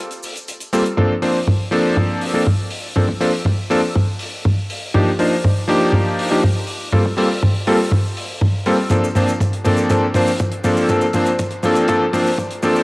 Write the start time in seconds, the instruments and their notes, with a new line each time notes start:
0.11 closed hi-hat, cabasa
0.23 open hi-hat, cabasa
0.36 closed hi-hat, cabasa
0.48 closed hi-hat, cabasa
0.60 closed hi-hat, cabasa
0.73 electric grand piano G3 A#3 C4 F4 A4, open hi-hat, cabasa
0.86 closed hi-hat, cabasa
0.97 electric grand piano F3 A#3 C4 D4 A4, kick, mid tom
1.22 electric grand piano F3 A#3 C4 D4 C5, open hi-hat
1.47 kick, mid tom
1.71 electric grand piano F3 A#3 C4 D4 A4, open hi-hat
1.97 kick, mid tom
2.21 open hi-hat
2.34 electric grand piano F3 A#3 C4 D4 A4
2.47 kick, mid tom
2.71 open hi-hat
2.96 electric grand piano F3 A#3 C4 D4 A4, kick, mid tom
3.09 kick
3.20 electric grand piano F3 A#3 C4 D4 A4, open hi-hat
3.45 kick, mid tom
3.70 electric grand piano F3 A#3 C4 D4 A4, open hi-hat
3.96 kick, mid tom
4.19 open hi-hat
4.45 kick, mid tom
4.70 open hi-hat
4.94 electric grand piano F3 A#3 D4 D#4 G4, kick, mid tom
5.19 electric grand piano F3 A#3 D4 D#4 C5, open hi-hat
5.44 kick, mid tom
5.67 electric grand piano F3 A#3 D4 D#4 G4, open hi-hat
5.92 kick, mid tom
6.19 open hi-hat
6.31 electric grand piano F3 A#3 D4 D#4 G4
6.44 kick, mid tom
6.67 open hi-hat
6.92 electric grand piano G3 A#3 C4 F4 A4, kick, mid tom
7.06 kick
7.17 electric grand piano G3 A#3 C4 F4 A4, open hi-hat
7.43 kick, mid tom
7.67 electric grand piano G3 A#3 C4 F4 A4, open hi-hat
7.92 kick, mid tom
8.17 open hi-hat
8.41 kick, mid tom
8.66 electric grand piano G3 A#3 C4 F4 A4, open hi-hat
8.90 electric grand piano F3 A#3 C4 D4 A4, kick, closed hi-hat, mid tom, cabasa
9.04 cabasa
9.15 electric grand piano F3 A#3 C4 D4 C5, open hi-hat, mid tom, cabasa
9.28 closed hi-hat, cabasa
9.40 kick, closed hi-hat, mid tom, cabasa
9.53 closed hi-hat
9.64 electric grand piano F3 A#3 C4 D4 A4, open hi-hat, mid tom, cabasa
9.77 closed hi-hat, cabasa
9.90 electric grand piano F3 A#3 C4 D4 A4, kick, closed hi-hat, mid tom, cabasa
10.14 electric grand piano F3 A#3 C4 D4 C5, open hi-hat, mid tom, cabasa
10.27 cabasa
10.40 kick, closed hi-hat, mid tom, cabasa
10.52 closed hi-hat
10.64 electric grand piano F3 A#3 C4 D4 A4, open hi-hat, mid tom, cabasa
10.77 cabasa
10.89 electric grand piano F3 A#3 C4 D4 A4, kick, closed hi-hat, mid tom, cabasa
11.01 kick, cabasa
11.13 electric grand piano F3 A#3 C4 D4 C5, open hi-hat, mid tom, cabasa
11.26 closed hi-hat, cabasa
11.39 kick, closed hi-hat, mid tom, cabasa
11.51 closed hi-hat
11.63 electric grand piano F3 A#3 C4 D4 A4, open hi-hat, mid tom, cabasa
11.75 closed hi-hat, cabasa
11.88 electric grand piano F3 A#3 C4 D4 A4, kick, closed hi-hat, mid tom, cabasa
12.13 electric grand piano F3 A#3 C4 D4 C5, open hi-hat, mid tom, cabasa
12.27 cabasa
12.38 kick, mid tom, cabasa
12.51 closed hi-hat
12.62 electric grand piano F3 A#3 C4 D4 A4, open hi-hat, mid tom, cabasa
12.76 cabasa